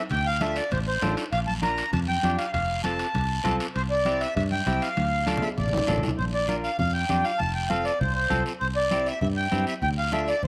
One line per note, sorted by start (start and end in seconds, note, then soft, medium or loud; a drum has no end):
0.10 0.59 D2 medium
0.10 0.27 G5 loud
0.10 high conga soft
0.10 low conga medium
0.10 high timbale medium
0.10 long guiro medium
0.27 0.42 F5 loud
0.40 0.62 D4 medium
0.40 0.62 F4 medium
0.40 0.63 A4 medium
0.40 0.57 E5 medium
0.40 high conga medium
0.40 high timbale medium
0.40 short guiro medium
0.56 0.70 D5 medium
0.56 high timbale medium
0.56 short guiro medium
0.71 0.96 A1 loud
0.71 0.79 C5 medium
0.71 high conga soft
0.71 low conga medium
0.71 high timbale medium
0.71 long guiro medium
0.87 1.15 C5 medium
1.02 1.14 A1 medium
1.02 1.23 D4 medium
1.02 1.23 F4 medium
1.02 1.23 A4 medium
1.02 high conga medium
1.02 high timbale medium
1.02 low timbale medium
1.02 short guiro medium
1.17 high timbale medium
1.17 short guiro medium
1.32 1.81 A#1 medium
1.32 1.39 F5 loud
1.32 high conga soft
1.32 high timbale medium
1.32 long guiro medium
1.47 1.54 A5 medium
1.47 high conga medium
1.62 1.83 D4 medium
1.62 1.84 F4 medium
1.62 1.84 A#4 medium
1.62 1.91 A#5 medium
1.62 high conga medium
1.62 high timbale medium
1.62 short guiro medium
1.78 high timbale medium
1.78 short guiro medium
1.93 2.17 F2 loud
1.93 2.00 A5 medium
1.93 high conga soft
1.93 low conga medium
1.93 high timbale medium
1.93 long guiro medium
2.08 2.36 G5 medium
2.08 high conga medium
2.23 2.35 F2 medium
2.23 2.45 D4 medium
2.23 2.45 F4 medium
2.23 2.45 G4 medium
2.23 high conga medium
2.23 high timbale medium
2.23 short guiro medium
2.38 2.51 F5 medium
2.38 high timbale medium
2.38 short guiro medium
2.53 3.02 F1 medium
2.53 2.81 F5 loud
2.53 high conga soft
2.53 low conga medium
2.53 high timbale medium
2.53 long guiro medium
2.84 3.06 C4 medium
2.84 3.06 F4 medium
2.84 3.06 A4 medium
2.84 3.56 A5 medium
2.84 high conga medium
2.84 high timbale medium
2.84 short guiro medium
2.99 high timbale medium
2.99 short guiro medium
3.15 3.39 C2 loud
3.15 high conga soft
3.15 low conga medium
3.15 high timbale medium
3.15 long guiro medium
3.44 3.57 C2 medium
3.44 3.66 C4 medium
3.44 3.66 F4 medium
3.44 3.66 A4 loud
3.44 high conga medium
3.44 low conga medium
3.44 high timbale medium
3.44 short guiro medium
3.60 high timbale medium
3.60 short guiro medium
3.75 4.24 C2 medium
3.75 3.82 C5 medium
3.75 high conga soft
3.75 high timbale medium
3.75 long guiro medium
3.90 4.22 D5 medium
4.05 4.27 C4 medium
4.05 4.27 E4 medium
4.05 4.27 G4 medium
4.05 high conga medium
4.05 high timbale medium
4.05 short guiro medium
4.21 4.34 E5 medium
4.21 high timbale medium
4.21 short guiro medium
4.36 4.60 G2 loud
4.36 4.43 E5 medium
4.36 high conga soft
4.36 low conga medium
4.36 high timbale medium
4.36 long guiro medium
4.51 4.83 G5 medium
4.51 high conga medium
4.66 4.79 C2 medium
4.66 4.88 C4 medium
4.66 4.88 E4 medium
4.66 4.88 G4 medium
4.66 high conga medium
4.66 high timbale medium
4.66 short guiro medium
4.82 5.44 F5 medium
4.82 high timbale medium
4.82 short guiro medium
4.97 5.46 D2 medium
4.97 high conga medium
4.97 high timbale medium
4.97 long guiro medium
5.26 5.48 D4 medium
5.26 5.48 F4 medium
5.26 5.48 A4 medium
5.26 high conga medium
5.26 high timbale medium
5.26 short guiro medium
5.37 low conga loud
5.42 5.49 E5 medium
5.42 high timbale medium
5.42 short guiro medium
5.58 5.82 A1 loud
5.58 6.00 D5 medium
5.58 low conga medium
5.58 long guiro medium
5.68 low conga medium
5.73 low timbale medium
5.77 low conga medium
5.87 6.00 A1 medium
5.87 6.09 D4 medium
5.87 6.09 F4 medium
5.87 6.09 A4 medium
5.87 low conga medium
5.87 low timbale medium
5.87 short guiro medium
5.98 low conga medium
6.03 low timbale medium
6.03 short guiro medium
6.08 low conga loud
6.18 6.67 A#1 medium
6.18 6.25 C5 medium
6.18 high conga soft
6.18 long guiro medium
6.34 6.47 D5 medium
6.48 6.69 D4 medium
6.48 6.70 F4 medium
6.48 6.70 A#4 medium
6.48 6.55 D5 medium
6.48 high conga medium
6.48 short guiro medium
6.64 6.77 F5 medium
6.64 short guiro medium
6.78 7.03 F2 medium
6.78 6.93 F5 medium
6.78 high conga soft
6.78 low conga medium
6.78 long guiro medium
6.93 7.25 G5 medium
7.09 7.22 F2 medium
7.09 7.31 D4 medium
7.09 7.31 F4 medium
7.09 7.31 G4 medium
7.09 high conga medium
7.09 short guiro medium
7.24 7.40 F5 medium
7.24 short guiro medium
7.39 7.89 F1 medium
7.39 7.53 A5 loud
7.39 high conga soft
7.39 low conga medium
7.39 long guiro medium
7.55 7.69 G5 medium
7.69 7.91 C4 medium
7.69 7.92 F4 medium
7.69 7.92 A4 medium
7.69 7.85 F5 medium
7.69 high conga medium
7.69 short guiro medium
7.85 7.99 D5 medium
7.85 short guiro medium
8.00 8.25 C2 loud
8.00 8.13 C5 medium
8.00 high conga soft
8.00 low conga medium
8.00 long guiro medium
8.14 8.43 C5 medium
8.30 8.43 C2 medium
8.30 8.51 C4 medium
8.30 8.51 F4 medium
8.30 8.52 A4 medium
8.30 high conga medium
8.30 low conga medium
8.30 short guiro medium
8.46 short guiro medium
8.60 9.10 C2 medium
8.60 8.67 C5 medium
8.60 high conga soft
8.60 long guiro medium
8.76 9.07 D5 medium
8.91 9.13 C4 medium
8.91 9.13 E4 medium
8.91 9.13 G4 medium
8.91 high conga medium
8.91 short guiro medium
9.06 9.19 E5 medium
9.06 short guiro medium
9.21 9.46 G2 loud
9.21 9.28 E5 medium
9.21 high conga soft
9.21 low conga medium
9.21 long guiro medium
9.36 9.65 G5 medium
9.51 9.64 G2 loud
9.51 9.73 C4 medium
9.51 9.73 E4 medium
9.51 9.73 G4 medium
9.51 high conga medium
9.51 short guiro medium
9.67 9.74 E5 medium
9.67 short guiro medium
9.82 10.31 D2 medium
9.82 9.89 G5 loud
9.82 high conga soft
9.82 low conga medium
9.82 long guiro medium
9.98 10.12 F5 medium
10.12 10.34 D4 medium
10.12 10.34 F4 medium
10.12 10.34 A4 medium
10.12 10.28 E5 medium
10.12 high conga medium
10.12 short guiro medium
10.28 10.42 D5 medium
10.28 short guiro medium
10.43 10.47 A1 medium
10.43 10.47 C5 medium
10.43 high conga soft
10.43 low conga medium
10.43 long guiro medium